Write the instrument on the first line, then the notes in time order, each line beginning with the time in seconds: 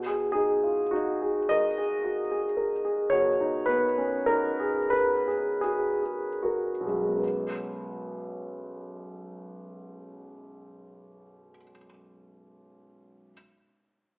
grand piano
Already playing: B2
0.06 G#4
0.32 D#4 G#4
0.63 F4
0.91 D#4 F#4
1.22 G#4
1.49 A#4 D#5
1.78 G#4
2.04 F#4
2.32 G#4
2.57 A#4
2.85 G#4
3.10 B2 C#5
3.41 D#4
3.66 B3 B4
3.98 C#4
4.26 D#4 A#4
4.60 G#4
4.90 A#4 B4
5.28 G#4
5.61 F#4 G#4
6.03 G#4
6.43 F#4 A#4
6.81 B1
6.86 F#2 G#4
6.94 F#3
7.00 G#3
7.07 B3
7.14 C#4
7.19 B4